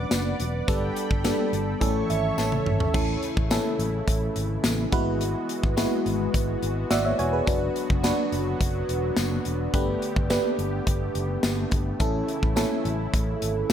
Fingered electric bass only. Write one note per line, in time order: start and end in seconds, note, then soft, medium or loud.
0.11 0.32 F#1 medium
0.40 0.60 E1 medium
0.68 0.89 G1 loud
1.11 1.31 G1 loud
1.53 1.73 G1 loud
1.81 2.02 A1 medium
2.09 2.30 G#1 medium
2.38 2.58 A1 medium
2.66 2.86 G#1 medium
2.94 3.15 A1 loud
3.37 3.57 A1 medium
3.79 4.00 A1 medium
4.08 4.28 A1 loud
4.36 4.56 G#1 loud
4.64 4.85 A1 medium
4.92 5.33 G#1 medium
5.64 5.84 G#1 loud
6.06 6.26 G#1 loud
6.34 6.55 G#1 loud
6.62 6.83 G#1 medium
6.91 7.11 G#1 medium
7.19 7.40 E1 medium
7.47 7.68 F#1 loud
7.90 8.10 F#1 loud
8.32 8.53 F#1 medium
8.61 8.81 F#1 loud
8.89 9.09 E1 loud
9.17 9.38 F#1 loud
9.46 9.66 E1 medium
9.74 9.94 G1 loud
10.16 10.37 G1 loud
10.58 10.79 G1 loud
10.87 11.07 G1 loud
11.15 11.36 F#1 loud
11.44 11.64 G1 medium
11.72 11.92 G1 medium
12.00 12.21 A1 loud
12.43 12.63 A1 medium
12.85 13.05 A1 loud
13.14 13.34 A1 loud
13.42 13.62 G#1 loud